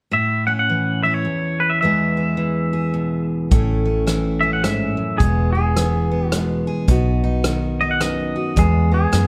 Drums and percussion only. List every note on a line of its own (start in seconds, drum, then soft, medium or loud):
3.51 kick loud
3.51 closed hi-hat medium
4.07 cross-stick medium
4.07 closed hi-hat medium
4.64 cross-stick medium
4.64 closed hi-hat medium
5.20 kick loud
5.20 closed hi-hat medium
5.76 cross-stick medium
5.76 closed hi-hat medium
6.32 cross-stick medium
6.32 closed hi-hat medium
6.88 kick medium
6.88 closed hi-hat medium
7.44 cross-stick medium
7.44 closed hi-hat medium
8.01 cross-stick medium
8.01 closed hi-hat medium
8.57 kick loud
8.57 closed hi-hat medium
9.13 cross-stick medium
9.13 closed hi-hat medium